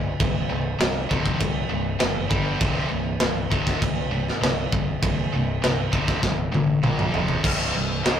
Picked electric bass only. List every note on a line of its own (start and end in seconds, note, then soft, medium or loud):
0.00 0.14 C1 medium
0.20 0.44 C1 medium
0.51 0.75 C1 medium
0.81 1.05 C1 medium
1.11 1.35 C1 medium
1.40 1.64 C1 medium
1.72 1.95 C1 medium
2.02 2.25 F#1 loud
2.31 2.55 G1 loud
2.61 2.85 C1 loud
2.92 3.16 C1 medium
3.22 3.46 C1 medium
3.52 3.76 C1 medium
3.82 4.30 C1 medium
4.42 4.66 C1 medium
4.72 4.96 C1 loud
5.02 5.26 C1 medium
5.34 5.57 C1 medium
5.63 5.87 C1 loud
5.93 6.17 C1 medium
6.24 6.48 C1 loud
6.54 6.78 A1 loud
6.83 7.07 A#1 loud
7.14 7.38 F1 loud
7.45 7.73 C1 medium
7.75 8.03 C1 medium
8.06 8.20 C#1 loud